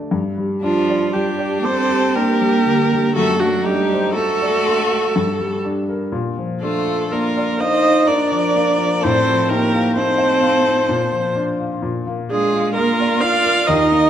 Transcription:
Already playing: A3 D4 D5
0.11 G2
0.38 G3
0.61 F3 D4 F4
0.90 D5
1.13 G3 D4 G4
1.39 D5
1.63 C4 A4 C5 D6
1.91 G4
2.15 A#3 D4 G4 A#4
2.41 G3
2.66 D3
2.92 G3
3.15 F#2 A3 F#4 A4
3.39 F#3 A3 D4 F#4
3.63 G3 D#4 G4
3.68 D4
3.94 C5
4.13 A3 F#4 A4
4.42 D5
4.67 C6
4.91 A4
5.16 G2
5.40 G3
5.65 D4
5.89 A#4
6.12 A#2
6.37 F3
6.61 A3 D4 F4 A4
6.86 F4
7.10 A#3 D4 F4 A#4
7.37 D5
7.59 D#4 C5 D#5 F5
7.84 F4
8.07 D4 A#4 D5
8.32 F3
8.56 A#3
8.78 F3
9.01 A2 C4 A4 C5
9.27 F3
9.49 A#3 D#4 G4 A#4
9.74 F4
9.96 C4 D#4 A4 C5
10.18 D#5
10.41 F5
10.66 F4
10.89 A#2
11.12 F3
11.36 D4
11.60 F4
11.82 A#2
12.07 A#3
12.30 G#3 D4 F4 G#4
12.54 F4
12.75 A#3 F4 A#4
13.00 D5
13.21 F4 D5 F5
13.44 A#4
13.67 D#2 D#4 A#4 D#5
13.92 A#3

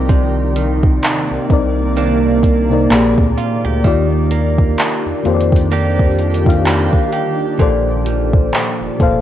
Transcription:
Already playing: C2 C3 D#3 A#3 C4 D#4 G4 A#4 D5
0.09 C3, kick, closed hi-hat
0.56 D#3, closed hi-hat
0.83 kick
1.03 clap, closed hi-hat
1.31 C2
1.49 C2 C3 C4 D#4 A#4, kick, closed hi-hat
1.53 D5
1.97 D#3 A#3 D4, closed hi-hat
2.43 kick, closed hi-hat
2.70 C3 C4 D#4 A#4
2.74 D5
2.89 A#1 A#2 A#3 C4 G4 G#4, clap, closed hi-hat
2.94 D5
3.18 D2, kick
3.38 F4, closed hi-hat
3.65 D2 G4
3.83 D#2 D#3 A#3 D4 F4 G4, kick, closed hi-hat
3.87 D5
4.31 A#3, closed hi-hat
4.58 kick
4.78 clap, closed hi-hat
5.06 F2
5.23 F2 D#3 A#3 F4 G4, closed hi-hat
5.28 C5
5.34 D5
5.41 closed hi-hat
5.52 kick, closed hi-hat
5.72 A#3 D4 G4, closed hi-hat
5.99 kick
6.19 closed hi-hat
6.34 closed hi-hat
6.44 D#3 A#3 F4 G4, kick
6.49 F5, closed hi-hat
6.66 A#3 D4 G4, clap, closed hi-hat
6.93 kick
7.12 G4, closed hi-hat
7.58 A#1 A#2 A#3 A4 C5 D5, kick, closed hi-hat
7.62 D5
8.06 F3, closed hi-hat
8.33 kick
8.53 clap, closed hi-hat
8.81 F1
8.99 F1 A#2 A#3 A4 C5, kick, closed hi-hat
9.03 F5

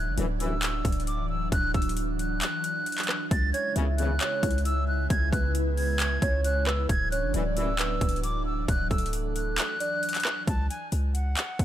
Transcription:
Already playing: E3 F#3 D4 F#6
0.07 F#1
0.18 D1 A1 F#2 E3, closed hi-hat
0.40 A1 F#2 E3 E6, closed hi-hat
0.63 clap, closed hi-hat
0.85 D1, kick, closed hi-hat
0.92 closed hi-hat
1.00 closed hi-hat
1.07 D6, closed hi-hat
1.29 E6
1.52 D1 F#6, kick, closed hi-hat
1.74 D1 E6, kick, closed hi-hat
1.82 closed hi-hat
1.89 closed hi-hat
1.97 closed hi-hat
2.19 F#6, closed hi-hat
2.42 clap, closed hi-hat
2.64 closed hi-hat
2.86 closed hi-hat
2.92 closed hi-hat
2.98 clap, closed hi-hat
3.03 closed hi-hat
3.09 cross-stick, clap
3.31 C#2 C#3 G#3 E4 A6, kick, closed hi-hat
3.53 C#5 G#6, closed hi-hat
3.76 G#1 C#2 E2 C#3 E5, closed hi-hat
3.98 G#1 E2 C#3 F#6, closed hi-hat
4.21 C#5, clap, closed hi-hat
4.43 C#2, kick, closed hi-hat
4.51 closed hi-hat
4.58 closed hi-hat
4.65 E6, closed hi-hat
4.88 F#6
5.10 C#2 G#6, kick, closed hi-hat
5.33 C#2 B4 F#6, kick, closed hi-hat
5.55 closed hi-hat
5.77 G#6, open hi-hat
6.00 clap, closed hi-hat
6.22 C#2 C#5, kick, closed hi-hat
6.44 C#5 F#6, closed hi-hat
6.67 B4 E6, cross-stick, clap
6.89 D1 E3 F#3 D4 G#6, kick, closed hi-hat
7.11 C#5 F#6, closed hi-hat
7.24 F#1
7.34 D1 A1 F#2 E3 D5, closed hi-hat
7.56 A1 F#2 E3 E6, closed hi-hat
7.79 B4, clap, closed hi-hat
8.01 D1, kick, closed hi-hat
8.09 closed hi-hat
8.16 closed hi-hat
8.23 D6, closed hi-hat
8.46 E6
8.68 D1 F#6, kick, closed hi-hat
8.91 D1 A4 E6, kick, closed hi-hat
8.98 closed hi-hat
9.06 closed hi-hat
9.13 closed hi-hat
9.36 F#6, closed hi-hat
9.58 clap, closed hi-hat
9.80 D5, closed hi-hat
10.03 closed hi-hat
10.09 closed hi-hat
10.15 clap, closed hi-hat
10.20 closed hi-hat
10.25 cross-stick, clap
10.47 C#2 A5, kick, closed hi-hat
10.70 G#5, closed hi-hat
10.92 C#2, closed hi-hat
11.14 F#5, closed hi-hat
11.37 clap, closed hi-hat
11.59 C#2, kick, closed hi-hat

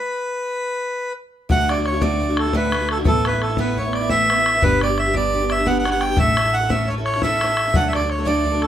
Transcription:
Already playing: B4
1.49 D2 A2 D3 A3 D4 F#4 F#5, bodhran
1.69 D3 A3 D4 F#4 D5, bodhran
1.77 D3 A3 D4 F#4
1.86 C#5, bodhran
1.93 D3 A3 D4 F#4
2.00 D2 A2 D3 A3 D4 F#4 D5, bodhran
2.20 D3 A3 D4 F#4, bodhran
2.29 D3 A3 D4 F#4
2.37 A4, bodhran
2.45 D3 A3 D4 F#4
2.53 D2 A2 D3 A3 D4 F#4 B4, bodhran
2.71 D3 A3 D4 F#4, bodhran
2.81 D3 A3 D4 F#4
2.89 A4, bodhran
2.97 D3 A3 D4 F#4
3.05 A1 A2 E3 A3 B3 E4 A4, bodhran
3.24 E3 A3 B3 E4 B4, bodhran
3.33 A3 B3 E4
3.42 A4, bodhran
3.49 A3 B3 E4
3.57 A2 E3 A3 B3 E4 B4, bodhran
3.77 E3 A3 B3 E4 C#5, bodhran
3.84 A3 B3 E4
3.93 D5, bodhran
4.01 A3 B3 E4
4.10 A2 E3 A3 B3 E4 E5, bodhran
4.30 E3 A3 B3 E4, bodhran
4.38 A3 B3 E4
4.46 bodhran
4.55 A3 B3 E4
4.61 G1 G3 B3 D4 G4 B4, bodhran
4.81 G3 B3 D4 G4 D5, bodhran
4.89 B3 D4 G4
4.98 E5, bodhran
5.06 B3 D4 G4
5.13 G3 B3 D4 G4 D5, bodhran
5.32 G3 B3 D4 G4, bodhran
5.41 B3 D4 G4
5.50 E5, bodhran
5.57 B3 D4 G4
5.66 G3 B3 D4 G4 F#5, bodhran
5.79 F#5
5.84 G3 B3 D4 G4, bodhran
5.91 B3 D4 G4 F#5
6.00 G5, bodhran
6.09 B3 D4 G4
6.16 A1 A2 A3 C#4 E4 A4 E5, bodhran
6.35 A3 C#4 E4 A4, bodhran
6.44 C#4 E4 A4
6.54 F#5
6.61 C#4 E4 A4
6.69 A2 A3 C#4 E4 A4 E5, bodhran
6.87 A3 C#5, bodhran
6.91 C#4 E4 A4
6.98 C#4 E4 A4
7.05 C#5, bodhran
7.14 C#4 E4 A4, bodhran
7.22 A2 A3 C#4 E4 A4 E5, bodhran
7.41 A3 C#4 E4 A4, bodhran
7.50 C#4 E4 A4
7.57 bodhran
7.66 C#4 E4 A4
7.74 D2 A2 F#3 A3 D4 A4 F#5, bodhran
7.88 E5
7.93 F#3 A3 D4 A4 D5, bodhran
8.01 F#3 A3 D4 A4
8.10 C#5, bodhran
8.19 F#3 A3 D4 A4
8.25 D2 A2 F#3 A3 D4 A4 D5, bodhran
8.44 F#3 A3 D4 A4, bodhran
8.52 F#3 A3 D4 A4
8.62 A4, bodhran

